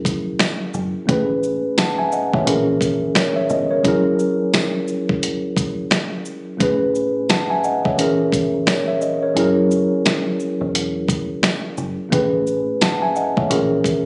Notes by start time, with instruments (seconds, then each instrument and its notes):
Already playing: fingered electric bass E1, tine electric piano F#3 C#4 E4 G#4 A#4
0.05 kick, closed hi-hat, shaker
0.39 snare, closed hi-hat, tambourine
0.74 fingered electric bass F#1, shaker
1.06 fingered electric bass A1, tine electric piano A2 A3 C#4 G#4, kick, closed hi-hat
1.11 tine electric piano B4
1.43 shaker
1.78 tine electric piano F#5 A5, snare, closed hi-hat, tambourine
1.98 tine electric piano E5 G#5
2.12 tine electric piano D#5 F#5, shaker
2.34 fingered electric bass A1, tine electric piano C#5 E5, kick
2.44 fingered electric bass A#1, tine electric piano A#2 E3 C#4 G#4, closed hi-hat
2.49 tine electric piano A#4
2.81 kick, closed hi-hat, shaker
3.15 tine electric piano A#4 C#5, snare, closed hi-hat, tambourine
3.36 tine electric piano C#5 E5
3.50 fingered electric bass G1, tine electric piano D#5, shaker
3.71 tine electric piano A#4 C#5
3.83 tine electric piano F#3 C#4 E4 G#4, kick, closed hi-hat
3.88 tine electric piano A#4
4.19 shaker
4.53 snare, closed hi-hat, tambourine
4.88 shaker
5.09 kick
5.23 closed hi-hat
5.57 kick, closed hi-hat, shaker
5.91 snare, closed hi-hat, tambourine
6.25 shaker
6.57 tine electric piano A2 A3 C#4 G#4, kick, closed hi-hat
6.62 tine electric piano B4
6.95 shaker
7.29 tine electric piano F#5 A5, snare, closed hi-hat, tambourine
7.50 tine electric piano E5 G#5
7.64 tine electric piano D#5 F#5, shaker
7.85 tine electric piano C#5 E5, kick
7.96 tine electric piano A#2 E3 C#4 G#4, closed hi-hat
8.01 tine electric piano A#4
8.32 kick, closed hi-hat, shaker
8.67 tine electric piano A#4 C#5, snare, closed hi-hat, tambourine
8.88 tine electric piano C#5 E5
9.01 tine electric piano D#5, shaker
9.22 tine electric piano A#4 C#5
9.34 fingered electric bass F#1, tine electric piano F#3 C#4 E4 G#4, closed hi-hat
9.40 tine electric piano A#4
9.71 shaker
10.05 snare, closed hi-hat, tambourine
10.40 shaker
10.61 fingered electric bass E1
10.75 closed hi-hat
11.09 kick, closed hi-hat, shaker
11.43 snare, closed hi-hat, tambourine
11.77 fingered electric bass F#1, shaker
12.09 fingered electric bass A1, tine electric piano A2 A3 C#4 G#4, kick, closed hi-hat
12.14 tine electric piano B4
12.47 shaker
12.81 tine electric piano F#5 A5, snare, closed hi-hat, tambourine
13.02 tine electric piano E5 G#5
13.16 tine electric piano D#5 F#5, shaker
13.37 fingered electric bass A1, tine electric piano C#5 E5, kick
13.48 fingered electric bass A#1, tine electric piano A#2 E3 C#4 G#4, closed hi-hat
13.53 tine electric piano A#4
13.84 kick, closed hi-hat, shaker